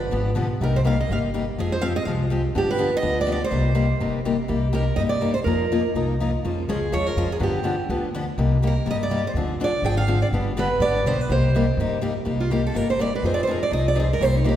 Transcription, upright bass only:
0.12 0.33 G#1 medium
0.36 0.57 B1 medium
0.60 0.99 C2 medium
1.09 1.48 G1 medium
1.58 1.97 F2 medium
2.06 2.45 C2 medium
2.56 2.94 G2 medium
3.03 3.42 D2 medium
3.52 3.91 C2 medium
4.00 4.39 G1 medium
4.50 4.88 C2 medium
4.97 5.36 G2 medium
5.46 5.85 F2 medium
5.95 6.34 C2 medium
6.44 6.63 F2 medium
6.68 6.89 C#2 medium
6.92 7.13 D#2 medium
7.16 7.37 F2 medium
7.40 7.79 G2 medium
7.89 8.28 D2 medium
8.37 8.77 C2 medium
8.86 9.25 G2 medium
9.34 9.73 D2 medium
9.82 10.22 G#1 medium
10.31 10.70 G1 medium
10.79 11.01 G#1 medium
11.05 11.25 B1 medium
11.29 11.68 C2 medium
11.77 12.16 G2 medium
12.26 12.65 C2 medium
12.75 13.14 G1 medium
13.23 13.62 F2 medium
13.71 14.10 C2 medium
14.20 14.56 C2 medium

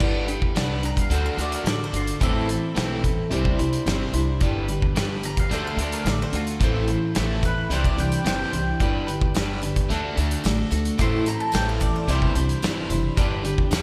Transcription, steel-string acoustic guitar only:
0.00 0.27 G3 medium
0.00 0.28 D4 medium
0.00 0.27 G4 medium
0.00 0.25 B4 medium
0.26 0.55 D4 soft
0.26 0.56 G4 medium
0.26 0.55 B4 medium
0.55 1.09 G3 medium
0.55 1.09 D4 medium
0.55 1.11 G4 medium
0.55 1.11 B4 medium
1.10 1.38 D3 medium
1.10 1.38 A3 medium
1.10 1.38 D4 medium
1.10 1.38 F#4 medium
1.10 1.35 A4 medium
1.37 1.64 D4 soft
1.37 1.65 F#4 soft
1.37 1.65 A4 medium
1.65 1.93 A3 medium
1.65 1.93 D4 medium
1.65 1.93 F#4 medium
1.65 1.91 A4 medium
1.92 2.21 D4 soft
1.92 2.21 F#4 soft
1.92 2.20 A4 soft
2.20 2.48 A2 medium
2.20 2.48 E3 medium
2.20 2.49 A3 medium
2.20 2.48 C4 medium
2.20 2.48 E4 medium
2.20 2.46 A4 medium
2.47 2.73 A3 soft
2.47 2.74 C4 soft
2.47 2.75 E4 soft
2.47 2.75 A4 medium
2.75 3.31 A3 medium
2.75 3.31 C4 medium
2.75 3.31 E4 medium
2.75 3.32 A4 medium
3.31 3.58 C3 medium
3.31 3.59 E3 medium
3.31 3.59 G3 loud
3.31 3.58 D4 loud
3.31 3.57 E4 medium
3.31 3.56 C5 medium
3.57 3.85 G3 soft
3.57 3.86 D4 medium
3.57 3.86 E4 medium
3.57 3.86 C5 medium
3.86 4.14 G3 medium
3.86 4.14 D4 medium
3.86 4.13 E4 medium
3.86 4.12 C5 medium
4.13 4.40 G3 medium
4.13 4.41 D4 medium
4.13 4.42 E4 medium
4.13 4.41 C5 medium
4.41 4.69 G3 medium
4.41 4.69 D4 medium
4.41 4.70 G4 medium
4.41 4.68 B4 medium
4.69 4.96 D4 soft
4.69 4.98 G4 soft
4.69 4.97 B4 medium
4.97 5.51 G3 medium
4.97 5.51 D4 medium
4.97 5.53 G4 medium
4.97 5.53 B4 medium
5.51 5.79 D3 medium
5.51 5.79 A3 medium
5.51 5.79 D4 medium
5.51 5.80 F#4 medium
5.51 5.77 A4 medium
5.79 6.07 F#4 soft
5.79 6.06 A4 medium
5.83 6.07 D4 soft
6.07 6.34 A3 medium
6.07 6.35 D4 medium
6.07 6.35 F#4 medium
6.07 6.33 A4 medium
6.34 6.62 D4 soft
6.34 6.62 F#4 soft
6.34 6.61 A4 medium
6.61 6.89 A2 medium
6.61 6.89 E3 medium
6.61 6.89 A3 medium
6.61 6.89 C4 medium
6.61 6.88 E4 medium
6.61 6.87 A4 medium
6.88 7.14 A3 soft
6.88 7.15 C4 soft
6.88 7.16 E4 soft
6.88 7.16 A4 medium
7.15 7.70 A3 medium
7.15 7.71 C4 medium
7.15 7.71 E4 medium
7.15 7.72 A4 medium
7.70 7.98 C3 medium
7.70 7.98 E3 medium
7.70 7.98 G3 medium
7.70 7.99 D4 medium
7.70 7.97 E4 medium
7.70 7.96 C5 medium
7.97 8.23 G3 soft
7.97 8.25 D4 soft
7.97 8.25 E4 medium
7.97 8.25 C5 soft
8.24 8.52 G3 medium
8.24 8.53 D4 medium
8.24 8.52 E4 medium
8.24 8.51 C5 medium
8.52 8.78 G3 soft
8.52 8.79 D4 soft
8.52 8.81 E4 soft
8.52 8.80 C5 medium
8.80 9.07 G3 medium
8.80 9.08 D4 medium
8.80 9.08 G4 medium
8.80 9.06 B4 medium
9.07 9.35 D4 soft
9.07 9.36 G4 medium
9.07 9.35 B4 medium
9.35 9.90 G3 medium
9.35 9.90 D4 medium
9.35 9.91 G4 medium
9.35 9.91 B4 medium
9.90 10.17 D3 medium
9.90 10.18 A3 medium
9.90 10.18 D4 medium
9.90 10.17 F#4 medium
9.90 10.16 A4 loud
10.17 10.45 D4 soft
10.17 10.45 F#4 soft
10.17 10.44 A4 medium
10.45 10.72 A3 medium
10.45 10.73 D4 medium
10.45 10.73 F#4 medium
10.45 10.71 A4 medium
10.72 11.01 D4 soft
10.72 11.00 F#4 medium
10.72 10.99 A4 medium
11.00 11.27 A2 medium
11.00 11.27 E3 medium
11.00 11.27 A3 medium
11.00 11.28 C4 medium
11.00 11.28 E4 medium
11.00 11.26 A4 medium
11.27 11.54 A3 soft
11.27 11.55 C4 soft
11.27 11.55 E4 soft
11.27 11.54 A4 medium
11.55 12.09 A3 medium
11.55 12.09 C4 medium
11.55 12.09 E4 medium
11.55 12.10 A4 medium
12.09 12.36 C3 medium
12.09 12.36 E3 medium
12.09 12.36 G3 medium
12.09 12.36 D4 medium
12.09 12.36 E4 medium
12.09 12.35 C5 medium
12.36 12.61 G3 soft
12.36 12.62 D4 soft
12.36 12.64 E4 medium
12.36 12.63 C5 medium
12.62 12.90 G3 medium
12.62 12.90 D4 medium
12.62 12.90 E4 medium
12.62 12.89 C5 medium
12.90 13.16 G3 medium
12.90 13.17 D4 medium
12.90 13.18 E4 medium
12.90 13.17 C5 medium
13.17 13.44 G3 medium
13.17 13.45 D4 loud
13.17 13.43 G4 loud
13.17 13.42 B4 loud
13.43 13.71 D4 soft
13.43 13.72 G4 medium
13.43 13.71 B4 medium
13.71 13.82 G3 medium
13.71 13.82 D4 medium
13.71 13.82 G4 medium
13.71 13.82 B4 medium

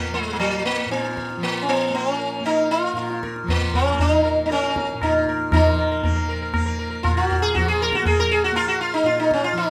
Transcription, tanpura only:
0.00 0.85 A#2 medium
0.00 1.36 F3 medium
0.00 0.34 A#3 medium
0.34 1.90 A#3 medium
0.86 2.93 A#2 medium
1.37 3.43 F3 medium
1.90 2.40 A#3 medium
2.40 3.93 A#3 medium
2.93 4.94 A#2 medium
3.43 5.50 F3 medium
3.93 4.45 A#3 medium
4.45 6.02 A#3 medium
4.94 7.03 A#2 medium
5.51 7.54 F3 medium
6.02 6.53 A#3 medium
6.53 8.03 A#3 medium
7.03 9.03 A#2 medium
7.54 9.52 F3 medium
8.03 8.52 A#3 medium
8.52 9.70 A#3 medium
9.03 9.70 A#2 medium
9.53 9.70 F3 medium

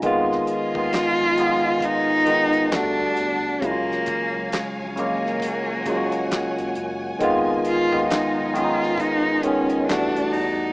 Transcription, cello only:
0.50 1.87 F4 loud
1.85 2.76 D#4 loud
2.74 3.66 D4 loud
3.64 4.55 A#3 loud
4.53 4.97 G#3 medium
4.98 6.72 A#3 medium
7.68 8.08 F4 loud
8.10 8.57 D#4 medium
8.56 9.02 F4 medium
9.00 9.46 D#4 loud
9.44 9.88 C#4 loud
9.88 10.34 D4 medium
10.32 10.73 D#4 loud

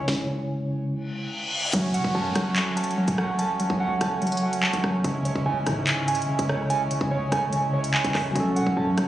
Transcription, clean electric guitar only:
0.00 0.91 C#3 medium
0.00 1.11 C#5 medium
0.00 0.70 G#5 medium
1.73 2.34 F#3 medium
1.94 3.17 F#5 medium
2.15 2.76 A5 medium
2.35 2.96 F#3 medium
2.77 3.38 A5 loud
2.98 3.59 F#3 medium
3.18 3.79 F#5 medium
3.39 4.00 A5 loud
3.60 4.21 F#3 medium
3.80 4.41 F#5 loud
4.01 4.62 A5 loud
4.22 4.83 F#3 medium
4.43 5.05 F#5 medium
4.63 5.05 A5 loud
4.84 5.04 F#3 medium
5.04 5.65 C#3 loud
5.25 6.48 C#5 medium
5.46 6.07 G#5 loud
5.66 6.28 C#3 medium
6.08 6.69 G#5 medium
6.29 6.89 C#3 medium
6.49 7.10 C#5 medium
6.70 7.31 G#5 loud
6.91 7.51 C#3 medium
7.11 7.72 C#5 loud
7.32 7.93 G#5 medium
7.52 8.14 C#3 medium
7.73 8.36 C#5 medium
7.94 8.35 G#5 medium
8.15 8.35 C#3 medium
8.35 8.96 F#3 medium
8.56 9.08 F#5 medium
8.77 9.08 A5 loud
8.98 9.08 F#3 medium

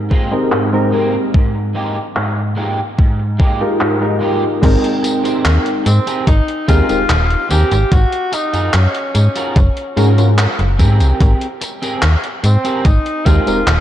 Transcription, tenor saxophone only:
5.86 6.25 C4 medium
6.27 6.66 D#4 loud
6.68 7.47 F4 loud
7.50 7.93 G4 loud
7.92 8.35 F#4 loud
8.34 8.76 D#4 loud
8.74 10.39 C#4 medium
12.45 12.86 C4 medium
12.85 13.27 D#4 loud
13.26 13.80 F4 loud

